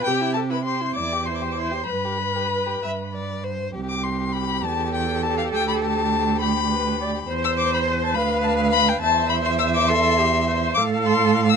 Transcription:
0.04 0.85 C3 medium
0.04 0.36 G4 medium
0.04 0.23 G4 medium
0.04 0.33 G5 loud
0.21 0.37 E4 medium
0.34 0.52 G4 medium
0.34 0.42 A4 medium
0.34 0.40 A5 medium
0.51 0.65 E4 medium
0.51 0.57 B4 medium
0.51 0.64 B5 medium
0.64 0.82 G4 medium
0.64 0.97 C5 medium
0.64 0.94 C6 medium
0.81 0.96 E4 medium
0.95 1.77 E2 medium
0.95 1.14 E4 medium
0.95 1.26 D5 medium
0.95 1.28 D6 loud
1.13 1.29 G4 medium
1.26 1.43 E4 medium
1.26 1.91 C5 medium
1.26 1.37 C6 medium
1.35 1.44 D6 medium
1.42 1.57 G4 soft
1.42 1.53 C6 medium
1.51 1.60 D6 medium
1.58 1.73 E4 medium
1.58 1.85 C6 medium
1.71 1.86 G4 soft
1.86 2.71 G2 medium
1.86 2.06 B4 medium
1.86 3.44 B4 medium
1.86 3.39 B5 loud
2.05 2.20 G4 soft
2.18 2.37 B4 soft
2.36 2.50 G4 soft
2.51 2.68 B4 soft
2.67 2.82 G4 soft
2.80 3.62 G2 medium
2.80 2.91 E5 medium
3.13 3.45 D5 medium
3.44 3.74 C5 medium
3.73 4.64 C2 medium
3.73 7.25 G4 medium
3.89 4.05 D6 medium
4.04 4.34 C6 medium
4.33 4.66 B5 loud
4.62 5.53 E2 medium
4.62 6.43 A4 medium
4.62 4.94 A5 loud
4.94 5.24 G5 medium
5.22 5.37 A5 loud
5.38 5.44 F5 medium
5.52 7.27 D2 medium
5.52 5.68 G5 loud
5.68 5.74 B5 loud
5.83 6.40 A5 loud
6.40 6.71 G4 medium
6.40 7.27 B5 loud
6.72 7.00 B4 medium
7.01 7.09 D5 medium
7.28 8.16 E2 medium
7.28 8.12 C5 medium
7.28 8.18 C5 loud
7.44 7.50 E6 loud
7.58 7.72 D6 loud
7.74 7.79 B5 medium
7.88 7.93 C6 loud
8.04 8.16 A5 loud
8.15 9.01 D2 medium
8.15 9.02 B4 loud
8.15 8.99 F5 medium
8.15 8.43 B5 loud
8.43 8.51 A5 loud
8.72 8.90 B5 loud
8.89 9.00 G5 medium
9.01 10.79 E2 medium
9.01 9.91 C5 loud
9.01 10.73 E5 medium
9.01 9.29 A5 loud
9.29 9.36 B5 loud
9.45 9.51 C6 loud
9.59 9.65 E6 loud
9.75 9.89 D6 loud
9.88 10.20 A4 loud
9.88 10.74 C6 loud
10.19 10.47 G4 medium
10.47 10.79 C5 loud
10.74 11.56 A2 loud
10.74 11.56 A4 loud
10.74 11.56 F5 loud
10.74 10.82 D6 loud
11.05 11.48 C6 loud
11.49 11.55 E6 loud

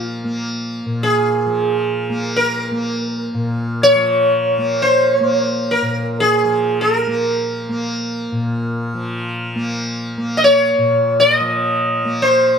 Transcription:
0.00 0.86 A#2 medium
0.00 1.46 F3 medium
0.00 0.24 A#3 medium
0.24 2.10 A#3 medium
0.86 3.34 A#2 medium
1.03 2.36 G#4 medium
1.46 3.94 F3 medium
2.10 2.71 A#3 medium
2.36 3.87 A#4 medium
2.71 4.58 A#3 medium
3.34 5.82 A#2 medium
3.83 4.85 C#5 medium
3.95 6.44 F3 medium
4.58 5.20 A#3 medium
4.82 5.71 C5 medium
5.20 7.07 A#3 medium
5.71 6.20 A#4 medium
5.82 8.32 A#2 soft
6.20 6.78 G#4 medium
6.44 8.94 F3 medium
6.81 8.97 A#4 medium
7.07 7.69 A#3 medium
7.69 9.55 A#3 medium
8.32 10.78 A#2 medium
8.94 11.40 F3 medium
9.55 10.18 A#3 medium
10.18 12.05 A#3 medium
10.37 10.44 D#5 medium
10.44 11.19 C#5 medium
10.78 12.59 A#2 medium
11.20 11.35 D5 medium
11.35 12.25 D#5 medium
11.40 12.59 F3 medium
12.05 12.59 A#3 medium
12.22 12.59 C5 medium

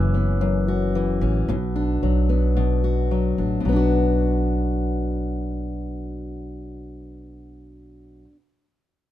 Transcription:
0.00 1.18 F#1 medium
0.00 0.40 F#2 medium
0.00 0.94 E3 medium
0.00 1.21 C#4 medium
0.14 2.29 B3 medium
0.41 1.49 F#2 medium
0.68 2.83 F#4 medium
0.95 1.55 E3 medium
1.21 1.46 A1 medium
1.21 1.55 C#4 medium
1.49 1.99 B1 medium
1.49 2.55 B2 medium
1.76 3.38 D4 medium
2.03 3.34 B1 medium
2.03 3.11 F#3 medium
2.29 3.68 B3 medium
2.57 3.59 B2 medium
2.84 3.76 F#4 medium
3.11 3.65 F#3 medium
3.38 3.63 A1 medium
3.38 3.72 D4 soft
3.60 8.23 B2 medium
3.65 8.24 B1 medium
3.65 8.28 F#3 medium
3.65 8.32 B3 medium
3.72 8.36 D4 medium
3.72 8.39 F#4 medium

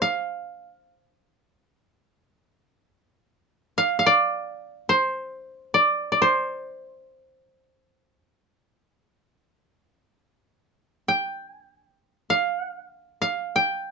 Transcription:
0.00 0.25 A#4 soft
0.00 1.34 C5 medium
0.00 2.37 F5 medium
3.78 3.99 F5 medium
3.99 5.43 F5 soft
4.06 5.66 D5 medium
4.89 6.21 C5 medium
5.74 6.12 D5 medium
6.12 7.72 D5 soft
6.22 8.51 C5 medium
11.08 11.50 G5 medium
11.50 11.61 G#5 medium
11.61 12.43 G5 medium
12.30 13.21 F5 medium
13.22 13.91 F5 medium
13.56 13.91 G5 medium

